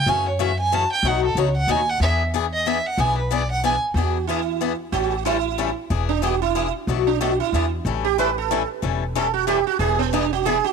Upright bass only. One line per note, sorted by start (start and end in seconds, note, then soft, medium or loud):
0.06 0.84 F#2 loud
1.03 1.29 B1 loud
1.35 1.63 C#2 medium
1.67 1.96 D#2 medium
2.00 2.78 E2 loud
2.98 3.76 B1 loud
3.94 4.73 E2 loud
4.92 5.71 A1 loud
5.90 6.68 E1 loud
6.87 7.40 B1 loud
7.52 7.79 E2 medium
7.85 8.63 A1 medium
8.82 9.61 E1 medium
9.79 10.57 E1 loud